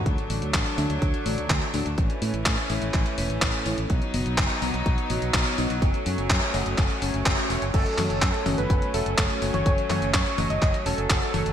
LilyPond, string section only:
\new Staff \with { instrumentName = "String section" } { \time 4/4 \key fis \dorian \tempo 4 = 125 << { <a d'>1 | <a cis'>1 | <b dis'>1 | <a cis'>1 |
<a cis'>1~ | <a cis'>1 | } \\ { fis1 | e1 | fis1~ | fis1 |
fis1~ | fis1 | } >> }